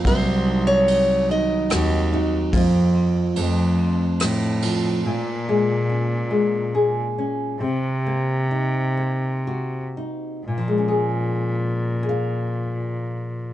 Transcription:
0.00 0.13 A#3 medium
0.00 0.13 C4 soft
0.05 1.34 C2 medium
0.05 1.30 C3 medium
0.05 2.53 F#3 medium
0.05 2.11 F#4 medium
0.05 0.67 C5 medium
0.05 kick medium
0.05 ride soft
0.46 1.28 D#4 medium
0.67 1.31 C#5 medium
0.88 ride soft
1.29 2.53 D#3 medium
1.29 2.62 D#4 medium
1.29 4.17 D#5 medium
1.70 2.35 D#2 medium
1.70 2.62 C4 soft
1.70 2.12 F#4 medium
1.70 cross-stick medium
1.70 ride soft
2.13 2.49 D#4 soft
2.13 2.54 F#4 medium
2.13 2.49 F#4 medium
2.53 3.36 F2 medium
2.53 3.18 F2 medium
2.53 3.31 F3 medium
2.53 3.45 F3 medium
2.53 3.31 A#3 medium
2.53 5.89 C4 medium
2.53 3.45 F4 medium
2.53 5.89 F4 medium
2.53 kick medium
2.53 ride soft
2.95 3.45 C4 soft
3.36 5.05 F2 medium
3.36 4.02 F2 medium
3.36 4.20 A3 medium
3.36 ride soft
3.79 5.13 C4 medium
4.20 4.86 A2 medium
4.20 5.13 A3 soft
4.20 cross-stick medium
4.20 ride soft
4.62 5.00 F3 medium
4.62 5.13 F4 soft
4.62 ride soft
5.04 7.03 A#2 medium
5.04 7.60 A#2 medium
5.49 6.29 G#3 soft
5.89 7.17 C#4 soft
6.31 7.60 G#3 soft
6.75 7.56 G#4 soft
7.18 7.56 C#4 soft
7.60 10.41 C3 medium
7.60 9.84 C3 medium
8.06 8.96 A#3 soft
8.51 9.96 D#4 soft
8.97 10.41 A#3 soft
9.47 10.42 F#4 soft
9.97 10.42 D#4 soft
10.47 13.53 A#2 medium
10.47 13.53 A#2 soft
10.58 13.53 F3 soft
10.68 12.03 G#3 soft
10.78 13.53 C#4 soft
10.88 12.03 G#4 soft
12.03 13.53 G#4 medium
12.09 13.53 F5 medium

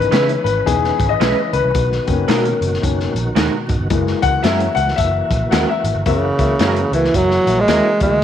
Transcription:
0.00 0.40 E3 medium
0.00 1.72 E3 medium
0.00 0.40 B3 medium
0.00 1.72 C#4 medium
0.00 0.41 D#4 medium
0.00 0.43 B4 loud
0.00 1.72 B4 medium
0.00 closed hi-hat medium
0.11 0.36 C#3 loud
0.11 0.28 G#3 medium
0.11 0.29 C#4 medium
0.11 0.29 E4 medium
0.11 0.29 B4 medium
0.11 snare loud
0.11 closed hi-hat medium
0.29 closed hi-hat medium
0.44 0.60 G#1 medium
0.44 0.65 B4 loud
0.44 closed hi-hat medium
0.65 0.90 E1 medium
0.65 0.95 E3 soft
0.65 0.95 B3 soft
0.65 0.95 D#4 medium
0.65 1.11 G#4 medium
0.65 kick medium
0.65 closed hi-hat loud
0.84 snare soft
1.00 1.15 G#1 medium
1.00 kick medium
1.00 closed hi-hat medium
1.09 1.49 D#5 loud
1.20 1.32 B1 medium
1.20 1.37 G#3 medium
1.20 1.37 C#4 medium
1.20 1.37 E4 medium
1.20 1.37 B4 medium
1.20 snare loud
1.20 closed hi-hat medium
1.53 1.61 C#2 medium
1.53 2.31 B4 loud
1.53 closed hi-hat medium
1.64 1.72 C2 medium
1.74 1.98 B1 loud
1.74 3.88 B2 medium
1.74 3.88 D#3 medium
1.74 3.88 F#4 medium
1.74 kick loud
1.74 closed hi-hat medium
1.92 snare soft
2.07 2.23 F#1 medium
2.07 2.80 D#3 medium
2.07 2.81 A#3 medium
2.07 2.81 C#4 medium
2.07 kick medium
2.07 closed hi-hat medium
2.28 2.52 B2 loud
2.28 2.45 A#3 medium
2.28 2.45 D#4 medium
2.28 2.45 F#4 loud
2.28 3.64 A#4 medium
2.28 2.45 A#4 medium
2.28 snare loud
2.28 closed hi-hat medium
2.45 closed hi-hat medium
2.61 2.76 F#1 medium
2.61 closed hi-hat medium
2.74 snare soft
2.82 3.06 F#1 medium
2.82 3.11 D#3 soft
2.82 3.11 A#3 soft
2.82 3.12 C#4 medium
2.82 kick medium
2.82 closed hi-hat loud
3.00 snare soft
3.15 3.30 A#1 medium
3.15 closed hi-hat medium
3.35 3.48 D#2 medium
3.35 3.52 A#3 medium
3.35 3.53 D#4 medium
3.35 3.53 F#4 medium
3.35 3.53 A#4 medium
3.35 snare loud
3.35 closed hi-hat loud
3.69 3.77 G#1 medium
3.69 kick medium
3.69 closed hi-hat medium
3.79 3.87 G1 medium
3.90 4.13 F#1 loud
3.90 4.72 E3 medium
3.90 6.04 E3 medium
3.90 4.73 G#3 medium
3.90 6.04 A#3 medium
3.90 4.73 A#3 medium
3.90 6.04 F#4 medium
3.90 kick loud
3.90 closed hi-hat medium
4.07 snare soft
4.22 4.39 C#2 medium
4.22 4.45 F#5 loud
4.22 kick medium
4.22 closed hi-hat medium
4.43 4.67 F#2 loud
4.43 4.60 F#3 medium
4.43 4.61 C#4 medium
4.43 4.61 E4 medium
4.43 4.61 A#4 medium
4.43 4.77 E5 medium
4.43 snare loud
4.43 closed hi-hat medium
4.60 closed hi-hat medium
4.75 4.92 C#2 medium
4.75 4.98 F#5 loud
4.75 closed hi-hat medium
4.88 snare soft
4.96 5.21 F#1 loud
4.96 5.53 E5 loud
4.96 kick medium
4.96 closed hi-hat medium
5.31 5.46 A#1 medium
5.31 kick loud
5.31 closed hi-hat medium
5.51 5.64 D#2 loud
5.51 5.69 F#3 medium
5.51 5.69 C#4 medium
5.51 5.69 E4 medium
5.51 5.69 A#4 medium
5.51 5.68 F#5 medium
5.51 snare loud
5.51 closed hi-hat loud
5.69 5.96 E5 medium
5.84 5.92 G#1 medium
5.84 closed hi-hat medium
5.95 6.03 G1 medium
6.06 6.29 F#1 loud
6.06 6.96 C#3 medium
6.06 8.20 E3 medium
6.06 6.24 A#3 medium
6.06 8.20 A#3 medium
6.06 6.24 F#4 medium
6.06 8.21 F#4 medium
6.06 6.24 E5 loud
6.06 kick loud
6.06 closed hi-hat medium
6.38 6.54 C#2 medium
6.38 6.51 A#3 loud
6.38 6.51 F#4 medium
6.38 6.51 E5 loud
6.38 kick medium
6.38 closed hi-hat medium
6.59 6.83 F#2 medium
6.59 6.76 F#3 medium
6.59 6.78 A#3 medium
6.59 6.77 C#4 medium
6.59 6.77 E4 medium
6.59 6.78 F#4 medium
6.59 6.77 A#4 medium
6.59 6.79 E5 medium
6.59 snare loud
6.59 closed hi-hat medium
6.76 closed hi-hat medium
6.92 7.08 C#2 medium
6.92 7.18 E3 medium
6.92 7.05 A#3 medium
6.92 7.05 F#4 medium
6.92 7.05 E5 medium
6.92 closed hi-hat medium
7.05 snare soft
7.14 7.38 F#1 loud
7.14 7.62 F#3 loud
7.14 7.32 A#3 medium
7.14 7.33 F#4 medium
7.14 7.33 E5 medium
7.14 kick medium
7.14 closed hi-hat medium
7.31 snare soft
7.46 7.62 A#1 medium
7.46 7.58 A#3 medium
7.46 7.59 F#4 medium
7.46 7.59 E5 medium
7.46 closed hi-hat medium
7.60 8.01 G#3 loud
7.67 7.79 D#2 medium
7.67 7.85 F#3 medium
7.67 7.86 A#3 medium
7.67 7.85 C#4 medium
7.67 7.85 E4 medium
7.67 7.86 F#4 medium
7.67 7.85 A#4 medium
7.67 7.87 E5 loud
7.67 snare loud
7.67 closed hi-hat medium
8.00 8.09 D#2 medium
8.00 8.24 G#3 medium
8.00 8.13 A#3 medium
8.00 8.13 F#4 medium
8.00 8.13 E5 medium
8.00 kick loud
8.00 closed hi-hat medium
8.10 8.19 D2 medium

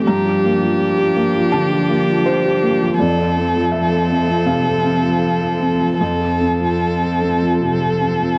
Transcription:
0.00 0.10 E3 medium
0.00 0.10 A3 medium
0.00 0.10 G4 medium
0.00 0.10 C6 loud
0.07 1.49 G2 medium
0.07 2.94 F3 medium
0.07 2.94 D4 medium
0.07 2.94 G4 medium
0.07 1.48 A#5 medium
0.27 0.55 G4 medium
0.45 0.73 A#3 medium
0.63 1.20 F3 medium
0.99 1.27 G4 medium
1.16 1.45 A#3 medium
1.35 1.64 F3 medium
1.52 1.82 D3 medium
1.52 2.21 A5 loud
1.72 2.00 G4 medium
1.89 2.18 A#3 medium
2.07 2.65 F3 medium
2.26 2.95 C5 loud
2.44 2.73 G4 medium
2.63 2.91 A#3 medium
2.81 2.99 F3 medium
2.98 4.42 F2 medium
2.98 5.96 F3 medium
2.98 5.96 C4 medium
2.98 5.96 A4 medium
2.98 3.68 D5 medium
3.18 3.47 A4 medium
3.36 3.65 C4 medium
3.55 4.12 F3 medium
3.72 4.41 E5 medium
3.92 4.20 A4 medium
4.10 4.39 C4 medium
4.28 4.57 F3 soft
4.46 4.76 C3 soft
4.46 5.96 F5 medium
4.65 4.95 A4 soft
4.84 5.14 C4 medium
5.03 5.64 F3 soft
5.41 5.72 A4 soft
5.60 5.92 C4 soft
5.80 6.12 F3 soft
6.00 7.59 F2 medium
6.00 8.37 F3 medium
6.00 8.38 C4 medium
6.00 8.37 A4 medium
6.00 6.20 A4 medium
6.21 6.53 A4 medium
6.41 6.73 C4 soft
6.61 7.26 F3 soft
7.02 7.34 A4 soft
7.22 7.54 C4 soft
7.42 7.74 F3 soft
7.61 7.93 C3 soft
7.82 8.14 A4 soft
8.01 8.33 C4 soft
8.21 8.38 F3 soft

